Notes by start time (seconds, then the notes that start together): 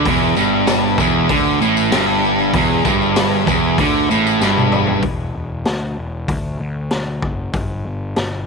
0.05 E1 E2 B4 E5, kick, open hi-hat
0.10 G#5
0.22 tambourine
0.37 G1 G2, tambourine
0.67 snare, open hi-hat, tambourine
0.98 E1 E2, kick, tambourine
1.29 D2 D3, kick, open hi-hat
1.61 A1 A2, tambourine
1.77 tambourine
1.92 G1 G2, snare, open hi-hat, tambourine
2.08 tambourine
2.23 tambourine
2.39 tambourine
2.53 E1 E2 G#4, kick, open hi-hat, tambourine
2.58 B4 E5
2.85 G1 G2, kick, tambourine
3.02 tambourine
3.16 snare, open hi-hat, tambourine
3.32 tambourine
3.47 E1 E2, kick, tambourine
3.64 tambourine
3.78 D2 D3, kick, open hi-hat, tambourine
4.10 A1 A2, tambourine
4.27 tambourine
4.41 G1 G2, snare, tambourine
4.57 high tom, tambourine
4.72 mid tom, tambourine
4.87 floor tom
5.02 E1, kick, open hi-hat
5.36 E1
5.65 D2, snare, open hi-hat
5.98 E1
6.28 D2, kick, open hi-hat
6.60 D2
6.90 D2, snare, open hi-hat
7.22 F#1, kick
7.53 G1, kick, open hi-hat
7.86 G1
8.16 G1, snare, open hi-hat